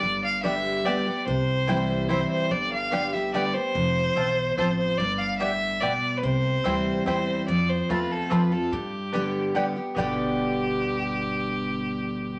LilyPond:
<<
  \new Staff \with { instrumentName = "Fiddle" } { \time 3/4 \key g \mixolydian \tempo 4 = 145 d''8 f''8 e''4 d''4 | c''2 c''8 c''8 | d''8 f''4 e''8 d''8 c''8~ | c''2 c''8 c''8 |
d''8 f''8 e''4 \tuplet 3/2 { d''4~ d''16 b'16 } | c''2 c''4 | d''8 c''8 b'8 a'8 b'8 a'8 | g'2~ g'8 r8 |
g'2.~ | g'2. | }
  \new Staff \with { instrumentName = "Mandolin" } { \time 3/4 \key g \mixolydian r4 <b g' d'' g''>8 r8 <b g' d'' g''>8 r8 | r4 <c' e' c'' g''>8 r8 <c' e' c'' g''>8 r8 | r4 <b g' d'' g''>8 r8 <b g' d'' g''>8 r8 | r4 <c' f' c'' a''>8 r8 <c' f' c'' a''>8 r8 |
r4 <b g' d'' g''>8 r8 <b g' d'' g''>8 r8 | r4 <c' e' c'' g''>8 r8 <c' e' c'' g''>8 r8 | r4 <c' f' c'' a''>8 r8 <c' f' c'' a''>8 r8 | r4 <b g' d'' g''>8 r8 <b g' d'' g''>8 r8 |
<b g' d'' g''>2.~ | <b g' d'' g''>2. | }
  \new Staff \with { instrumentName = "Steel-string acoustic guitar" } { \time 3/4 \key g \mixolydian << { r4 <d g b g'>4 <d g b g'>8 <b g'>8 | r4 <e g c' e'>4 <e g c' e'>4 | r4 <d g b g'>8 <b g'>8 <d g b g'>8 <b g'>8 | r2. |
r2. | r4 <e g c' e'>4 <e g c' e'>4 | r4 <a c' f'>4 <f a c' f'>8 <c' f'>8 | r4 <d g b g'>4 <d g b g'>8 <b g'>8 |
<g, b, d g b g'>2.~ | <g, b, d g b g'>2. | } \\ { g,2 r4 | c2 r4 | g,2 r4 | f,4 e,4 f,4 |
g,4 a,4 b,4 | c2 r4 | f,2 r4 | g,2 r4 |
r2. | r2. | } >> }
  \new Staff \with { instrumentName = "Upright bass" } { \clef bass \time 3/4 \key g \mixolydian g,,2. | c,2. | g,,2. | f,,4 b,,4 a,,4 |
g,,2. | c,4 d,4 e,4 | f,4 e,4 f,4 | g,2. |
g,,2.~ | g,,2. | }
>>